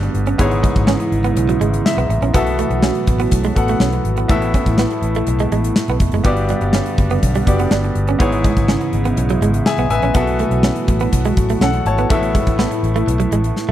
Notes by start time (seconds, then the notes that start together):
Already playing: G2 D3 G3 B3 F#4 G4 D5 F#5
0.03 muted clean electric guitar stroke, closed hi-hat
0.14 G1, closed hi-hat
0.27 C#4, closed hi-hat
0.38 G#1 G#2 C#3 E3 G#3 B3 E4 G#4 C#5, kick, closed hi-hat
0.51 muted clean electric guitar stroke, closed hi-hat
0.63 G#3, kick, closed hi-hat
0.76 G#1, kick, closed hi-hat
0.87 C#4, snare
1.00 muted clean electric guitar stroke, closed hi-hat
1.12 G#1, closed hi-hat
1.24 B3, closed hi-hat
1.36 B1, muted clean electric guitar stroke, closed hi-hat
1.49 F#3, closed hi-hat
1.60 G#1 G#3, closed hi-hat
1.74 closed hi-hat
1.86 E5, snare
1.97 B1 B3, closed hi-hat
2.09 A1, muted clean electric guitar stroke, closed hi-hat
2.22 A#1 C#4, closed hi-hat
2.34 B2 F#3 A3 B3 F#4 A4 E5, kick, closed hi-hat
2.46 closed hi-hat
2.59 A3, closed hi-hat
2.70 B1, muted clean electric guitar stroke, closed hi-hat
2.82 C#4, snare
2.95 closed hi-hat
3.07 A1, muted clean electric guitar stroke, kick, closed hi-hat
3.19 B3, closed hi-hat
3.31 B1, kick, closed hi-hat
3.44 G#3, closed hi-hat
3.56 A1 B3 F#4 A4 F#5, muted clean electric guitar stroke, kick, closed hi-hat
3.68 A3, closed hi-hat
3.80 B1 C#4, snare
3.92 muted clean electric guitar stroke, closed hi-hat
4.04 G#1, closed hi-hat
4.17 B3, closed hi-hat
4.28 A1 A2 A3 B3 E4 A4 E5, kick, closed hi-hat
4.42 muted clean electric guitar stroke, closed hi-hat
4.54 C#4, kick, closed hi-hat
4.66 A1, kick, closed hi-hat
4.78 B3, snare
4.91 muted clean electric guitar stroke, closed hi-hat
5.02 A1, closed hi-hat
5.15 A3, closed hi-hat
5.27 B1, muted clean electric guitar stroke, closed hi-hat
5.39 G#3, closed hi-hat
5.52 A1 G#3, closed hi-hat
5.64 closed hi-hat
5.76 snare
5.88 B1 B3, closed hi-hat
6.00 F1, muted clean electric guitar stroke, kick, closed hi-hat
6.12 F#1 G#3, closed hi-hat
6.24 G1 G2 D3 G3 B3 F#4 G4 D5 F#5, kick, closed hi-hat
6.37 closed hi-hat
6.49 G3, closed hi-hat
6.61 G1, muted clean electric guitar stroke, closed hi-hat
6.73 C#4, snare
6.86 closed hi-hat
6.98 F#1, muted clean electric guitar stroke, kick, closed hi-hat
7.10 B3, closed hi-hat
7.22 B1, kick, closed hi-hat
7.35 G3, closed hi-hat
7.46 F#1 B3 F#4 G4 D5, muted clean electric guitar stroke, kick, closed hi-hat
7.59 B3, closed hi-hat
7.71 G1 D4, snare
7.83 muted clean electric guitar stroke, closed hi-hat
7.95 G1, closed hi-hat
8.08 C#4, closed hi-hat
8.19 G#2 C#3 E3 G#3 B3 E4 G#4 C#5, kick, closed hi-hat
8.32 muted clean electric guitar stroke, closed hi-hat
8.44 G#3, kick, closed hi-hat
8.57 G#1, kick, closed hi-hat
8.68 C#4, snare
8.81 muted clean electric guitar stroke, closed hi-hat
8.93 G#1, closed hi-hat
9.05 B3, closed hi-hat
9.17 B1, muted clean electric guitar stroke, closed hi-hat
9.29 F#3, closed hi-hat
9.41 G#1 G#3, closed hi-hat
9.54 closed hi-hat
9.66 G#4 E5 G#5, snare
9.78 B1 B3, closed hi-hat
9.90 A1 B4 E5 G#5, muted clean electric guitar stroke, closed hi-hat
10.02 A#1 C#4, closed hi-hat
10.14 B1 B2 F#3 A3 B3 F#4 A4 E5, kick, closed hi-hat
10.27 closed hi-hat
10.39 A3, closed hi-hat
10.51 B1, muted clean electric guitar stroke, closed hi-hat
10.63 C#4, snare
10.76 closed hi-hat
10.88 A1, muted clean electric guitar stroke, kick, closed hi-hat
11.00 B3, closed hi-hat
11.12 B1, kick, closed hi-hat
11.25 G#3, closed hi-hat
11.37 A1, muted clean electric guitar stroke, kick, closed hi-hat
11.49 A3, closed hi-hat
11.61 B1 C#4 A4 F#5, snare
11.73 muted clean electric guitar stroke, closed hi-hat
11.85 G#1 C#5 A5, closed hi-hat
11.98 B3, closed hi-hat
12.10 A1 A2 A3 B3 E4 A4 E5, kick, closed hi-hat
12.23 muted clean electric guitar stroke, closed hi-hat
12.35 G#3, kick, closed hi-hat
12.47 A1, kick, closed hi-hat
12.59 B3, snare
12.71 muted clean electric guitar stroke, closed hi-hat
12.83 A1, closed hi-hat
12.96 A3, closed hi-hat
13.07 B1, muted clean electric guitar stroke, closed hi-hat
13.20 F#3, closed hi-hat
13.32 A1 G#3, closed hi-hat
13.44 closed hi-hat
13.56 snare
13.69 B1 A3